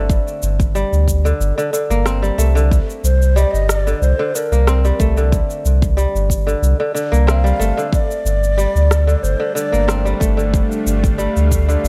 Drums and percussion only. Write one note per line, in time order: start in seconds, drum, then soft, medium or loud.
0.10 kick loud
0.10 shaker soft
0.28 shaker soft
0.43 shaker medium
0.60 kick medium
0.60 shaker soft
0.76 shaker soft
0.93 shaker soft
1.08 kick medium
1.08 shaker medium
1.26 shaker soft
1.41 shaker soft
1.59 shaker soft
1.74 shaker medium
1.91 shaker soft
2.06 cross-stick medium
2.06 shaker soft
2.24 shaker soft
2.39 shaker medium
2.57 shaker soft
2.71 kick loud
2.71 shaker soft
2.90 shaker soft
3.05 shaker medium
3.22 shaker soft
3.37 shaker soft
3.55 shaker soft
3.69 cross-stick medium
3.69 shaker medium
3.87 shaker soft
4.03 shaker soft
4.35 shaker medium
4.53 shaker soft
4.67 cross-stick medium
4.67 shaker soft
4.85 shaker soft
5.00 kick medium
5.00 shaker medium
5.17 shaker soft
5.32 kick loud
5.32 shaker soft
5.50 shaker soft
5.65 shaker medium
5.82 kick medium
5.82 shaker soft
5.98 shaker soft
6.16 shaker soft
6.30 kick medium
6.30 shaker medium
6.49 shaker soft
6.63 shaker soft
6.96 shaker medium
7.14 shaker soft
7.28 cross-stick medium
7.28 shaker soft
7.46 shaker soft
7.61 shaker medium
7.79 shaker soft
7.93 kick loud
7.93 shaker soft
8.11 shaker soft
8.26 shaker medium
8.44 shaker soft
8.59 shaker soft
8.76 shaker soft
8.91 cross-stick medium
8.91 shaker medium
9.09 shaker soft
9.24 shaker soft
9.57 shaker medium
9.74 shaker soft
9.89 cross-stick medium
9.89 shaker soft
10.07 shaker soft
10.21 kick loud
10.21 shaker medium
10.39 shaker soft
10.54 kick loud
10.54 shaker soft
10.72 shaker soft
10.87 shaker medium
11.04 kick loud
11.04 shaker soft
11.19 shaker soft
11.37 shaker soft
11.52 kick medium
11.52 shaker medium
11.69 shaker soft
11.85 shaker soft